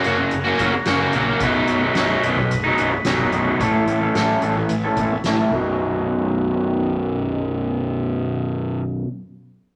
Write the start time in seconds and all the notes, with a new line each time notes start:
Already playing: F#2 C#3 A#4 C#5 F#5 A#5
0.04 F#1 F#3 A#3 C#4 F#4, closed hi-hat
0.19 muted overdriven electric guitar stroke
0.31 F#1, closed hi-hat
0.45 F#3 A#3 C#4 F#4
0.58 F#1 F#3 A#3 C#4 F#4, kick, closed hi-hat
0.74 muted overdriven electric guitar stroke
0.85 F#1 F#2 C#3 F#3 A#3 C#4 F#4, snare, closed hi-hat
1.00 F#3 A#3 C#4 F#4
1.13 A#1 F#3 A#3 C#4 F#4, closed hi-hat
1.40 B0 B1 F#2 B2 F#3 B4 D#5 B5, kick, closed hi-hat
1.44 D#4
1.67 B0, closed hi-hat
1.82 B2 F#3 D#4
1.95 B0 B1 F#2 B2 F#3, snare, closed hi-hat
1.99 D#4
2.23 B0 F#2 B2 F#3 D#4, closed hi-hat
2.37 muted overdriven electric guitar stroke, kick
2.51 B0, closed hi-hat
2.64 B2 F#3 D#4
2.78 B0 F#2 B2 F#3 D#4, closed hi-hat
2.92 muted overdriven electric guitar stroke
3.04 B0 B1 F#2 B2 F#3 D#4, snare, closed hi-hat
3.19 B2 F#3 D#4, kick
3.32 B0 F#2 B2 F#3 D#4, closed hi-hat
3.60 A1 A2 E3 A3 C#4 E4 A4 C#5 E5 A5 B5, kick, closed hi-hat
3.87 A1, closed hi-hat
4.00 A3 C#4 E4 A4
4.14 A1 A2 E3 A3 C#4 E4 A4, snare, closed hi-hat
4.41 A1 A3 C#4 E4 A4, closed hi-hat
4.56 muted overdriven electric guitar stroke
4.69 A1, closed hi-hat
4.84 A3 C#4 E4 A4
4.96 A1 A3 C#4 E4, kick, closed hi-hat
5.01 A4
5.12 muted overdriven electric guitar stroke
5.24 A1 A2 E3 A3 C#4 E4, snare, closed hi-hat
5.28 A4
5.39 A3 C#4 E4 A4
5.51 B0 B1 F#2 B2 F#3 D#4 F#4 B4 D#5 F#5, kick, ride
5.56 D#4